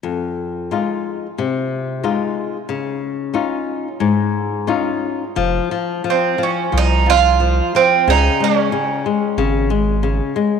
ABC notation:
X:1
M:4/4
L:1/8
Q:1/4=90
K:Fm
V:1 name="Bouzouki"
z8 | z8 | z2 C D E F2 C | E D4 z3 |]
V:2 name="Nylon-string guitar" clef=bass
F,,2 [A,EF]2 C,2 [A,EF]2 | D,2 [DEF]2 A,,2 [DEF]2 | F, F, F, F, F, F, F, F, | D, A, D, A, D, A, D, A, |]
V:3 name="Analog synth bass" clef=bass
z8 | z8 | F,,, z3 C,,4 | D,, z3 A,,,4 |]